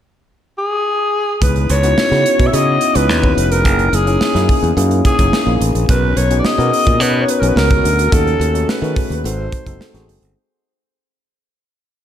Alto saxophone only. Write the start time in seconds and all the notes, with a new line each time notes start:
0.58 G#4
1.43 B4
1.71 C#5
2.47 E5
2.54 D#5
2.96 B4
3.52 A#4
3.94 G#4
5.06 G#4
5.89 B4
6.17 C#5
6.39 D5
6.45 D#5
7.02 B4
7.21 C#5
7.30 B4
7.40 A#4
7.48 B4
7.57 A#4
8.13 A4
8.69 B4
9.17 B4
9.25 C5